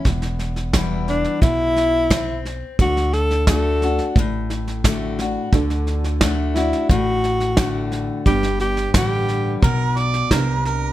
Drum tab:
HH |----p-------p---|----p-------p---|----p-------p---|----p-------p---|
SD |ooooo-ooo-o-o-o-|ooooo-ooo-ooo-o-|ooooo-ooo-ooo-o-|ooooo-o-o-ooo-o-|
BD |o---o---o---o---|o---o---o---o---|o---o---o---o---|o---o---o---o---|